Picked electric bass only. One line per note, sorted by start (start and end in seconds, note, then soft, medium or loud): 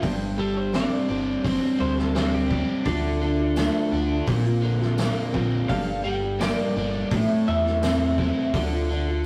0.03 0.84 G1 loud
1.10 1.36 G1 medium
1.44 1.58 G1 medium
1.81 2.62 D2 medium
2.86 3.67 D2 loud
3.93 4.20 D2 medium
4.27 5.09 A#1 loud
5.34 5.61 A#1 loud
5.70 6.52 G1 loud
6.76 7.04 G1 medium
7.11 7.25 A1 loud
7.49 8.30 E2 loud
8.53 9.26 D2 loud